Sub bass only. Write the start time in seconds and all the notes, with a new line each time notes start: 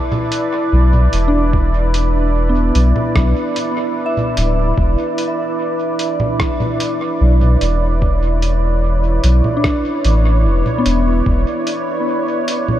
0.72 B1
1.13 E1
2.75 B1
3.15 B1
4.37 D1
4.78 E1
7.21 B1
7.61 E1
9.24 B1
10.05 A1
10.45 E1
10.86 E1
11.26 E1